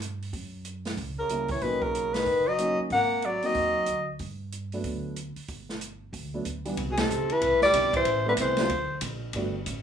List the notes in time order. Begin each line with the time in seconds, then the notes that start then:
Already playing: G2
0.02 closed hi-hat
0.22 open hi-hat
0.33 F#2, kick, open hi-hat
0.65 closed hi-hat
0.85 snare, open hi-hat
0.97 C#2, kick, open hi-hat
1.19 C#3 A#4
1.29 C#2 G3 A#3 C#4 E4, closed hi-hat
1.48 E3 C#5, kick, open hi-hat
1.61 B1 D#3 F#3 A#3 C#4 D#4 B4, kick, open hi-hat
1.82 C#3 A#4, kick
1.95 closed hi-hat
2.14 D#3 B4, snare, open hi-hat
2.26 F#1, kick, open hi-hat
2.48 F#3 D#5
2.58 F#3 A#3 C#4 D#4, closed hi-hat
2.79 muted upright bass stroke
2.90 G#1 A#3 F#5, kick, open hi-hat
3.22 F#3 D5, closed hi-hat
3.42 F#3 A#3 C4 D#4 D#5, open hi-hat
3.54 D#2, kick, open hi-hat
3.86 D2, closed hi-hat
4.19 G2, kick, open hi-hat
4.52 closed hi-hat
4.72 F#3 A3 B3 D4, open hi-hat
4.84 D2, kick, open hi-hat
5.16 closed hi-hat
5.36 muted upright bass stroke, open hi-hat
5.48 G1, kick, open hi-hat
5.69 snare
5.81 closed hi-hat
6.13 D2, kick, open hi-hat
6.34 F#3 A3 B3 D4
6.45 D2, closed hi-hat
6.65 C2 E3 G3 B3 D4, open hi-hat
6.77 C2, kick, ride
6.89 B2 G#4
6.97 C3 A4, snare, ride
7.09 C#2, hi-hat pedal
7.29 E3 B4, muted upright bass stroke, ride
7.41 C2, kick, ride
7.52 B1
7.61 G1 G3 D5, snare
7.73 B1 G3 B3 C4 D4 E4, kick, hi-hat pedal, ride
7.93 E3 C5, kick, ride
8.05 A1, kick, ride
8.26 D3 G3 A3 B3 C4 E4 B4
8.37 C2 E3, kick, hi-hat pedal, ride
8.41 C5
8.57 F#3 A#3 C4 D4 F4, snare, ride
8.69 D2, kick, ride
9.01 A#1, kick, hi-hat pedal, ride
9.33 G1 G3 A3 B3 D4 F#4, kick, ride
9.66 A1, kick, hi-hat pedal, ride